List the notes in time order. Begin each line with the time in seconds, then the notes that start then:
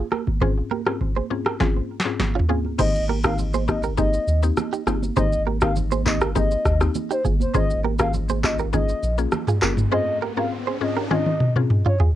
0.12 G4 A#4, cross-stick, high conga
0.27 kick, high conga
0.41 G#2 C4 C#4 F4 G#4 C5, kick, low conga
0.71 G4 A#4, high conga
0.86 G#2 C4 C#4 F4 G4 G#4 A#4, cross-stick
1.01 kick, low conga
1.17 G#4 C5, high conga
1.30 G#2 C4 C#4 F4 G#4, high conga
1.46 G4 A#4, cross-stick
1.60 G#2 C4 C#4 F4 G#4, kick, snare, low conga
1.76 high conga
2.00 snare
2.05 G#2 C4 C#4 F4 G#4
2.19 kick, snare, high conga, low conga
2.35 C#4 F4, floor tom
2.49 G#2 C4 C#4 F4 G#4, high conga
2.65 high conga
2.78 G#1 A#3 C4 D#4 G4 G#4 C5 D#5, kick, crash, low conga, shaker
2.95 shaker
3.09 G4 A#4, high conga
3.23 A#3 C4 D#4 G4 A#4 F5, kick, cross-stick, shaker
3.38 low conga, shaker
3.54 G#4 C5, high conga, shaker
3.68 A#3 C4 D#4 G4 D#5, kick, cross-stick, high conga, shaker
3.83 G1 G4 A#4, shaker
3.97 A#3 C4 D#4 G4 G#4 D#5, kick, low conga, shaker
4.13 shaker
4.27 D#2, shaker
4.42 A#3 C4 D#4 G4, shaker
4.57 cross-stick, high conga, low conga, shaker
4.73 D#4 G4, shaker
4.87 G1 A#3 C4 D#4 F4 G4 G#4, cross-stick, high conga, shaker
5.02 high conga, shaker
5.16 G#1 A#3 C4 D#4 G4 G#4 C5 D#5, kick, low conga, shaker
5.32 shaker
5.47 G4 A#4, high conga
5.61 A#3 C4 D#4 G4 A#4 F5, kick, cross-stick, shaker
5.76 low conga, shaker
5.91 G#4 C5, high conga, shaker
6.05 A#3 C4 D#4 G4 D#5, kick, clap, high conga, shaker
6.21 G1 G4 A#4, cross-stick, shaker
6.35 A#3 C4 D#4 G4 G#4 D#5, kick, low conga, shaker
6.51 shaker
6.65 D#2, kick, cross-stick, shaker
6.80 A#3 C4 D#4 G4, cross-stick, shaker
6.95 high conga, low conga, shaker
7.11 D#4 G4 C5, shaker
7.24 G1 F4 G#4, kick, high conga, shaker
7.40 C5, high conga, shaker
7.54 G#1 A#3 C#4 F4 G#4 C5 D#5, kick, riser, low conga, shaker
7.70 shaker
7.84 G4 A#4, high conga
7.99 A#3 C#4 F4 G4 G#4 A#4 F5, kick, cross-stick, shaker
8.14 low conga, shaker
8.29 G#4 C5, high conga, shaker
8.43 A#3 C#4 F4 G#4 D#5, kick, cross-stick, clap, high conga, shaker
8.59 G#1 G4 A#4, shaker
8.73 A#3 C#4 D#4 F4 G#4 D#5, kick, low conga, shaker
8.89 shaker
9.03 A#1, shaker
9.18 A#3 C#4 F4 G#4, shaker
9.32 cross-stick, high conga, low conga, shaker
9.48 F4 G#4, mid tom, shaker
9.62 G1 A#3 C#4 F4 G4 G#4 A#4, cross-stick, clap, high conga, shaker
9.77 mid tom, high conga, shaker
9.92 G#2 C4 C#4 F4 G#4 C5 D#5
10.22 G4 A#4
10.37 G#2 C4 C#4 F4 G4 G#4 A#4 F5
10.67 G#4 C5
10.81 G#2 C4 C#4 F4 G#4 D#5
10.97 G4 A#4
11.11 G#2 C4 C#4 F4 G#4 D#5, high tom
11.26 high tom
11.40 mid tom
11.56 G#2 C4 C#4 F4 G#4, mid tom
11.70 mid tom
11.86 C#4 F4 C#5, mid tom
12.00 F4 G#4, floor tom